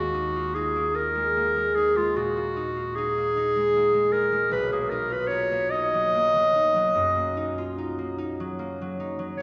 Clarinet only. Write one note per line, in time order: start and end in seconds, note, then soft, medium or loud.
0.00 0.56 F#4 medium
0.55 0.97 G#4 medium
0.95 1.77 A#4 medium
1.75 1.98 G#4 medium
1.97 2.17 F4 medium
2.16 2.97 F#4 medium
2.96 4.13 G#4 medium
4.12 4.52 A#4 medium
4.52 4.71 B4 medium
4.73 4.91 G#4 medium
4.90 5.13 A#4 medium
5.12 5.29 B4 medium
5.28 5.72 C#5 medium
5.70 7.75 D#5 medium
9.37 9.42 C#5 medium